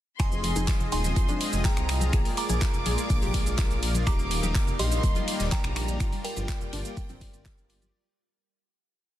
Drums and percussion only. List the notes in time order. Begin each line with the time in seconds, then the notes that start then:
0.20 finger snap, kick, closed hi-hat, ride, shaker
0.32 shaker
0.44 closed hi-hat, open hi-hat, ride
0.56 closed hi-hat, high bongo, high conga, shaker
0.68 kick, snare, clap, closed hi-hat, ride, shaker
0.80 low conga, shaker
0.92 closed hi-hat, open hi-hat, ride
1.04 snare, closed hi-hat, shaker
1.16 kick, closed hi-hat, ride, shaker
1.28 closed hi-hat, high bongo, high conga, shaker
1.41 closed hi-hat, open hi-hat, ride
1.53 snare, closed hi-hat, shaker
1.64 kick, snare, clap, closed hi-hat, ride, high conga, shaker
1.77 finger snap, closed hi-hat, low conga, shaker
1.89 finger snap, snare, closed hi-hat, open hi-hat, ride
2.01 closed hi-hat, high conga, shaker
2.13 finger snap, kick, closed hi-hat, ride, shaker
2.25 open hi-hat, shaker
2.37 closed hi-hat, open hi-hat, ride
2.49 closed hi-hat, high bongo, high conga, shaker
2.61 kick, snare, clap, closed hi-hat, ride, shaker
2.74 low conga, shaker
2.86 closed hi-hat, open hi-hat, ride, high conga
2.98 closed hi-hat, shaker
3.09 kick, closed hi-hat, open hi-hat, ride, shaker
3.22 closed hi-hat, high conga, low conga, shaker
3.34 kick, closed hi-hat, open hi-hat, ride
3.46 closed hi-hat, shaker
3.57 kick, snare, clap, closed hi-hat, ride, high conga, shaker
3.71 closed hi-hat, shaker
3.82 closed hi-hat, open hi-hat, ride
3.94 closed hi-hat, high conga, shaker
4.07 finger snap, kick, closed hi-hat, ride, shaker
4.19 shaker
4.31 closed hi-hat, open hi-hat, ride
4.43 closed hi-hat, high bongo, high conga, shaker
4.55 kick, snare, clap, closed hi-hat, ride, shaker
4.67 low conga, shaker
4.79 closed hi-hat, open hi-hat, ride, high conga
4.92 snare, closed hi-hat, shaker
5.03 kick, closed hi-hat, ride, shaker
5.15 closed hi-hat, high bongo, high conga, shaker
5.28 closed hi-hat, open hi-hat, ride
5.40 snare, closed hi-hat, shaker
5.51 kick, snare, clap, closed hi-hat, ride, high conga, shaker
5.64 finger snap, closed hi-hat, low conga, shaker
5.76 finger snap, snare, closed hi-hat, open hi-hat, ride
5.88 closed hi-hat, high conga, shaker
6.00 finger snap, kick, closed hi-hat, ride, shaker
6.12 open hi-hat, shaker
6.25 closed hi-hat, open hi-hat, ride
6.36 closed hi-hat, high bongo, high conga, shaker
6.48 kick, snare, clap, closed hi-hat, ride, shaker
6.61 low conga, shaker
6.73 closed hi-hat, open hi-hat, ride
6.85 closed hi-hat, shaker
6.97 kick, closed hi-hat, open hi-hat, ride, shaker
7.09 closed hi-hat, high conga, low conga, shaker
7.21 kick, closed hi-hat, open hi-hat, ride
7.34 closed hi-hat, shaker
7.46 kick, snare, clap, closed hi-hat, ride, high conga, shaker
7.58 closed hi-hat, shaker
7.70 closed hi-hat, open hi-hat, ride
7.82 closed hi-hat, high conga, shaker